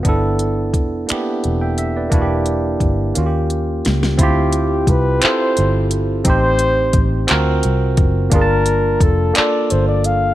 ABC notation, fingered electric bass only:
X:1
M:6/8
L:1/8
Q:3/8=58
K:Gmix
V:1 name="Fingered electric bass" clef=bass
G,,,2 F,,, z E,,,2 | E,,,2 G,,, _E,,2 _D,, | D,,2 C,, z G,,,2 | A,,,2 A,,, D,, C,, ^F,,, |
G,,,2 F,,, z G,,,2 |]